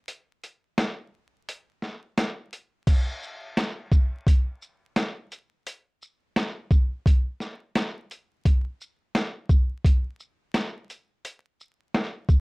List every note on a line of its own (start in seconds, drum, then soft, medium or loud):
0.08 closed hi-hat loud
0.44 closed hi-hat medium
0.78 snare loud
0.78 closed hi-hat medium
1.49 closed hi-hat loud
1.82 snare soft
2.17 snare loud
2.17 closed hi-hat medium
2.53 closed hi-hat medium
2.87 kick loud
2.87 closed hi-hat loud
2.87 crash loud
3.23 shaker medium
3.57 snare loud
3.57 closed hi-hat medium
3.91 kick medium
3.91 shaker medium
4.26 kick loud
4.26 closed hi-hat loud
4.62 shaker medium
4.96 snare loud
4.96 closed hi-hat medium
5.32 closed hi-hat medium
5.32 shaker medium
5.67 closed hi-hat loud
6.02 shaker medium
6.36 snare loud
6.36 closed hi-hat medium
6.71 kick loud
6.71 shaker medium
7.06 kick loud
7.06 closed hi-hat loud
7.40 snare soft
7.40 shaker medium
7.75 snare loud
7.75 closed hi-hat medium
8.11 closed hi-hat medium
8.11 shaker medium
8.45 kick loud
8.45 closed hi-hat loud
8.81 shaker medium
9.15 snare loud
9.15 closed hi-hat medium
9.50 kick loud
9.50 shaker medium
9.85 kick loud
9.85 closed hi-hat loud
10.20 shaker medium
10.54 snare loud
10.54 closed hi-hat medium
10.90 closed hi-hat medium
10.90 shaker medium
11.25 closed hi-hat loud
11.60 shaker medium
11.94 snare loud
11.94 closed hi-hat medium
12.29 kick loud
12.29 shaker medium